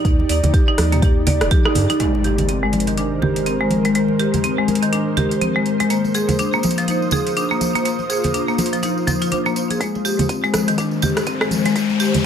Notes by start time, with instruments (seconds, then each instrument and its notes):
Already playing: ambient pad D#4 G4 D5
0.05 analog synth bass D#2, marimba D#4, kick, closed hi-hat, mid tom
0.20 muted conga
0.29 analog synth bass D#2, marimba D5, open hi-hat
0.43 analog synth bass D#2, closed hi-hat, high conga, low conga
0.54 marimba G4, kick, closed hi-hat, muted conga
0.68 marimba D#4
0.78 analog synth bass D#2, cross-stick, open hi-hat, muted conga, high conga
0.92 marimba A#3, closed hi-hat, mid tom
1.02 marimba G4, kick, closed hi-hat, mid tom, muted conga, high conga
1.27 marimba D5, open hi-hat, muted conga, high conga, low conga
1.41 analog synth bass D#1, cross-stick, closed hi-hat
1.51 marimba G4, kick, closed hi-hat, high conga
1.65 marimba D#4, cross-stick, muted conga
1.75 analog synth bass G2, open hi-hat, low conga
1.90 marimba D#4, closed hi-hat, muted conga
2.00 ambient pad D#3 G#3 A#4 C5, marimba G#3, closed hi-hat, impact
2.15 muted conga
2.24 marimba G4, closed hi-hat
2.38 closed hi-hat, high conga, low conga
2.49 marimba C4, closed hi-hat, muted conga
2.63 marimba G#3
2.73 closed hi-hat, muted conga, high conga
2.80 closed hi-hat
2.87 marimba D#3, closed hi-hat
2.97 marimba D4, closed hi-hat, muted conga
3.22 marimba G4, muted conga, low conga
3.36 closed hi-hat
3.46 marimba C4, closed hi-hat
3.61 marimba G#3, muted conga
3.71 closed hi-hat, high conga
3.85 marimba G#3, closed hi-hat, muted conga
3.95 marimba G#3, closed hi-hat
4.08 muted conga
4.19 marimba G4, closed hi-hat
4.34 closed hi-hat, high conga, low conga
4.44 marimba C4, closed hi-hat, muted conga
4.58 marimba G#3
4.68 closed hi-hat, muted conga, high conga
4.75 closed hi-hat
4.83 marimba D#3, closed hi-hat
4.92 marimba D4, closed hi-hat, muted conga
5.17 marimba G4, closed hi-hat, muted conga, high conga, low conga
5.31 closed hi-hat
5.41 marimba C4, closed hi-hat, high conga
5.56 marimba G#3, muted conga
5.66 closed hi-hat
5.80 marimba G#3, closed hi-hat, muted conga
5.90 marimba A#3, ambient pad A#3 F4 D#6, closed hi-hat, tambourine
6.04 tambourine, muted conga
6.14 marimba G#4, closed hi-hat, tambourine
6.28 closed hi-hat, tambourine, high conga, low conga
6.39 marimba D4, closed hi-hat, tambourine, muted conga
6.53 marimba A#3, tambourine
6.63 closed hi-hat, tambourine, muted conga, high conga
6.71 closed hi-hat
6.78 marimba F3, closed hi-hat, tambourine
6.88 marimba D#4, closed hi-hat, tambourine, muted conga
7.02 tambourine
7.11 marimba G#4, tambourine, muted conga, low conga
7.27 closed hi-hat, tambourine
7.37 marimba D4, closed hi-hat, tambourine
7.50 marimba A#3, tambourine, muted conga
7.61 closed hi-hat, tambourine, high conga
7.75 marimba A#3, closed hi-hat, tambourine, muted conga
7.85 marimba A#3, closed hi-hat, tambourine
7.99 tambourine, muted conga
8.10 marimba G#4, closed hi-hat, tambourine
8.24 closed hi-hat, tambourine, high conga, low conga
8.34 marimba D4, closed hi-hat, tambourine, muted conga
8.48 marimba A#3, tambourine
8.58 closed hi-hat, tambourine, muted conga, high conga
8.66 closed hi-hat
8.73 marimba F3, closed hi-hat, tambourine
8.83 marimba D#4, closed hi-hat, tambourine, muted conga
8.98 tambourine
9.07 marimba F3, closed hi-hat, tambourine, muted conga, high conga, low conga
9.21 marimba F4, closed hi-hat, tambourine
9.31 marimba D4, closed hi-hat, tambourine, high conga
9.46 marimba A#3, tambourine, muted conga
9.56 closed hi-hat, tambourine
9.70 marimba G#4, closed hi-hat, tambourine, muted conga
9.80 ambient pad D#3 G#3 A#4 C5, marimba G#3, kick, closed hi-hat, tambourine, riser
9.95 tambourine, muted conga
10.05 marimba G4, tambourine
10.19 closed hi-hat, tambourine, high conga, low conga
10.29 marimba C4, kick, closed hi-hat, tambourine
10.44 marimba G#3, tambourine
10.54 cross-stick, closed hi-hat, tambourine, muted conga, high conga
10.68 marimba D#3, closed hi-hat, tambourine
10.78 marimba D4, kick, closed hi-hat, tambourine, muted conga
10.91 tambourine
11.02 marimba G4, tambourine, muted conga, low conga
11.17 cross-stick, closed hi-hat, tambourine
11.27 marimba C4, kick, closed hi-hat, tambourine
11.41 marimba G#3, cross-stick, tambourine, muted conga
11.51 closed hi-hat, tambourine, high conga
11.65 marimba G#3, closed hi-hat, tambourine, muted conga
11.76 marimba G#3, kick, closed hi-hat, tambourine
11.89 tambourine, muted conga
12.00 marimba G4, tambourine
12.14 closed hi-hat, tambourine, high conga, low conga